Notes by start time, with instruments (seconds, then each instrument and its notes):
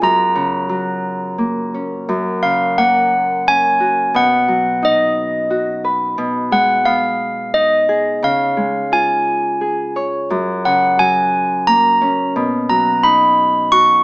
Already playing: harp B3 G#4
0.02 harp F#2, handbells A#5
0.35 harp C#3
0.69 harp F#3
1.38 harp A#3
1.74 harp C#4
2.09 harp F#2
2.43 harp C#3, handbells F5
2.78 harp A#3, handbells F#5
3.47 harp C#4, handbells G#5
3.80 harp F#4
4.14 harp B2, handbells F#5
4.48 harp F#3
4.82 harp D#4, handbells D#5
5.50 harp F#4
5.84 harp B4
6.18 harp B2
6.52 harp G#3, handbells F#5
6.85 harp B3, handbells F5
7.54 harp D#4, handbells D#5
7.89 harp G#4
8.23 harp C#3, handbells F5
8.57 harp G#3
8.92 harp F4, handbells G#5
9.61 harp G#4
9.96 harp C#5
10.30 harp F#2
10.65 harp C#3, handbells F#5
10.99 harp F#3, handbells G#5
11.67 harp A#3, handbells A#5
12.02 harp C#4
12.36 harp B2
12.69 harp F#3, handbells A#5
13.03 harp D#4, handbells B5
13.72 harp F#4, handbells C#6